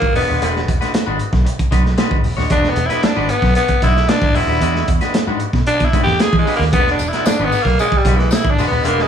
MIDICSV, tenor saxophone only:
0, 0, Header, 1, 2, 480
1, 0, Start_track
1, 0, Tempo, 527241
1, 378, Time_signature, 4, 2, 24, 8
1, 8265, End_track
2, 0, Start_track
2, 0, Title_t, "Tenor saxophone"
2, 0, Program_c, 0, 66
2, 0, Note_on_c, 0, 58, 100
2, 123, Note_off_c, 0, 58, 0
2, 142, Note_on_c, 0, 59, 85
2, 585, Note_off_c, 0, 59, 0
2, 2292, Note_on_c, 0, 62, 101
2, 2452, Note_on_c, 0, 59, 90
2, 2466, Note_off_c, 0, 62, 0
2, 2607, Note_on_c, 0, 64, 94
2, 2620, Note_off_c, 0, 59, 0
2, 2769, Note_on_c, 0, 62, 88
2, 2783, Note_off_c, 0, 64, 0
2, 3003, Note_on_c, 0, 59, 93
2, 3016, Note_off_c, 0, 62, 0
2, 3240, Note_off_c, 0, 59, 0
2, 3245, Note_on_c, 0, 59, 96
2, 3469, Note_off_c, 0, 59, 0
2, 3490, Note_on_c, 0, 64, 102
2, 3729, Note_on_c, 0, 62, 99
2, 3743, Note_off_c, 0, 64, 0
2, 3969, Note_on_c, 0, 64, 99
2, 3982, Note_off_c, 0, 62, 0
2, 4447, Note_off_c, 0, 64, 0
2, 5164, Note_on_c, 0, 62, 102
2, 5328, Note_on_c, 0, 64, 92
2, 5342, Note_off_c, 0, 62, 0
2, 5488, Note_off_c, 0, 64, 0
2, 5496, Note_on_c, 0, 67, 101
2, 5653, Note_on_c, 0, 68, 108
2, 5667, Note_off_c, 0, 67, 0
2, 5807, Note_off_c, 0, 68, 0
2, 5813, Note_on_c, 0, 56, 87
2, 5960, Note_off_c, 0, 56, 0
2, 5974, Note_on_c, 0, 58, 84
2, 6045, Note_off_c, 0, 58, 0
2, 6130, Note_on_c, 0, 59, 112
2, 6278, Note_off_c, 0, 59, 0
2, 6292, Note_on_c, 0, 62, 84
2, 6454, Note_on_c, 0, 64, 95
2, 6468, Note_off_c, 0, 62, 0
2, 6615, Note_on_c, 0, 62, 88
2, 6629, Note_off_c, 0, 64, 0
2, 6781, Note_on_c, 0, 59, 97
2, 6794, Note_off_c, 0, 62, 0
2, 6944, Note_on_c, 0, 58, 91
2, 6957, Note_off_c, 0, 59, 0
2, 7094, Note_off_c, 0, 58, 0
2, 7099, Note_on_c, 0, 56, 99
2, 7258, Note_on_c, 0, 55, 90
2, 7272, Note_off_c, 0, 56, 0
2, 7425, Note_on_c, 0, 52, 86
2, 7439, Note_off_c, 0, 55, 0
2, 7587, Note_on_c, 0, 64, 101
2, 7600, Note_off_c, 0, 52, 0
2, 7746, Note_on_c, 0, 62, 92
2, 7759, Note_off_c, 0, 64, 0
2, 7893, Note_off_c, 0, 62, 0
2, 7898, Note_on_c, 0, 59, 82
2, 8055, Note_on_c, 0, 58, 97
2, 8069, Note_off_c, 0, 59, 0
2, 8215, Note_on_c, 0, 56, 82
2, 8228, Note_off_c, 0, 58, 0
2, 8265, Note_off_c, 0, 56, 0
2, 8265, End_track
0, 0, End_of_file